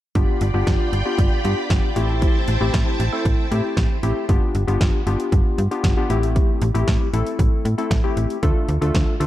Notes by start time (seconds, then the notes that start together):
0.15 G1 B3 D4 F4 G4 D5 G5 B5, kick, closed hi-hat
0.41 G1, closed hi-hat
0.54 G1 B3 D4 F4 G4
0.67 G1, kick, snare, closed hi-hat
0.93 G1, closed hi-hat
1.06 B3 D4 F4 G4
1.18 G1, kick, closed hi-hat
1.44 G2 B3 D4 F4 G4, closed hi-hat
1.70 G1, kick, snare, closed hi-hat
1.96 A1 A3 C4 E4 G4 C5 G5 A5, closed hi-hat
2.22 kick, closed hi-hat
2.48 A1, closed hi-hat
2.61 A1 A3 C4 E4 G4
2.74 A1, kick, snare, closed hi-hat
3.00 A1, closed hi-hat
3.12 A3 C4 E4 A4
3.25 A1, kick, closed hi-hat
3.51 A2 A3 C4 E4 G4, closed hi-hat
3.77 A1, kick, snare, closed hi-hat
4.03 A1 A3 C4 E4 G4, closed hi-hat
4.29 G1 B3 D4 F4 G4, kick, closed hi-hat
4.55 G1, closed hi-hat
4.67 G1 B3 D4 F4 G4, closed hi-hat
4.81 G1, kick, snare, closed hi-hat
5.07 G1 B3 D4 F4 G4, closed hi-hat
5.20 closed hi-hat
5.32 G1, kick, closed hi-hat
5.58 G2, closed hi-hat
5.71 B3 D4 F4 G4, closed hi-hat
5.84 G1, kick, snare, closed hi-hat
5.97 B3 D4 F4 G4
6.10 A1 A3 C4 E4 G4, closed hi-hat
6.23 closed hi-hat
6.36 kick, closed hi-hat
6.62 A1, closed hi-hat
6.74 A1 A3 C4 E4 G4, closed hi-hat
6.88 A1, kick, snare, closed hi-hat
7.13 A1 A3 C4 E4 A4, closed hi-hat
7.27 closed hi-hat
7.39 A1, kick, closed hi-hat
7.65 A2, closed hi-hat
7.78 A3 C4 E4 A4, closed hi-hat
7.91 A1, kick, snare, closed hi-hat
8.04 A3 C4 E4 G4
8.17 A1, closed hi-hat
8.30 closed hi-hat
8.43 D2 A3 D4 F4 A4, kick, closed hi-hat
8.68 D2, closed hi-hat
8.81 D2 A3 D4 F4 A4, closed hi-hat
8.95 D2, kick, snare, closed hi-hat
9.20 D2 A3 D4 F4 A4, closed hi-hat